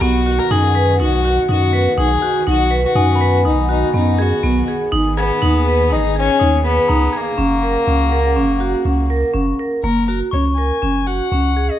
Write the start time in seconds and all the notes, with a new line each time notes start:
Already playing: D#3
0.01 B1 B3 F#4
0.26 F#4
0.39 A#4
0.51 F#2 D#4 G#4
0.75 B4
1.00 B1 D#4 F#4
1.25 F#4
1.49 F#2 D#4 F#4
1.73 B4
1.98 B1 D#4 G#4
2.22 F#4
2.47 B1 D#4 F#4
2.71 B4
2.86 F#4
2.95 F#2 D#4 G#5
3.16 B5
3.21 B4
3.45 B1 D#4
3.69 D#4 F#4
3.94 F#2 B3 D#4
4.19 F#4 G#4
4.43 B1 B3
4.68 G#4
4.91 G#1 D#4 G#4
5.17 B3 G#4
5.42 D#2 D#4
5.66 B4
5.90 G#1 D#4
6.16 C#4 G#4
6.39 D#2 D#4
6.64 B3 B4
6.89 C#2 D#4 A#5
7.13 A#3 G#4
7.38 F#1 C#3 A#3 C#4 F#4
7.63 A#4
7.87 C#2 C#4
8.12 A#4
8.36 F#1 C#4
8.60 F#4
8.85 C#2 C#4
9.10 A#4
9.33 F#1 C#4
9.59 A#4
9.84 F#1 A#3 A#4
10.08 F#4 A#4
10.31 C#2 C#4 C#5 C#6
10.56 A#4 G#5
10.82 F#1 C#4
11.06 F#4 F#5
11.32 C#2 C#4
11.57 G#4
11.71 D#5